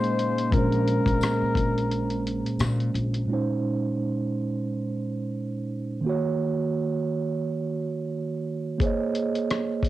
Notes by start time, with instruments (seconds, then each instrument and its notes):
Already playing: tine electric piano A#2 G#3 C#4 D#4 C5, analog synth pad C#3 G#3 A#3, flugelhorn C5
0.04 closed hi-hat
0.19 closed hi-hat
0.38 closed hi-hat
0.50 upright bass A#1, tine electric piano A#2 G#3, flugelhorn A#4, kick, closed hi-hat
0.56 tine electric piano C#4 C5
0.72 closed hi-hat
0.87 closed hi-hat
1.06 upright bass A#1, kick, closed hi-hat
1.21 cross-stick, closed hi-hat, tambourine
1.42 muted upright bass stroke
1.55 upright bass A#1, kick, closed hi-hat
1.78 closed hi-hat
1.91 closed hi-hat
2.10 closed hi-hat
2.27 closed hi-hat
2.46 closed hi-hat
2.59 upright bass A#2, cross-stick, closed hi-hat, tambourine
2.80 closed hi-hat
2.94 upright bass A#1, closed hi-hat
3.14 closed hi-hat
3.26 tine electric piano A#2 G#3 C#4
3.32 tine electric piano D#4 C5
6.01 tine electric piano D#3 A#3
6.06 tine electric piano F#4 C#5
8.78 tine electric piano A#3 G#4 C5, kick, closed hi-hat
8.84 tine electric piano C#5 D#5
9.15 closed hi-hat
9.35 closed hi-hat
9.51 cross-stick, closed hi-hat
9.83 kick, closed hi-hat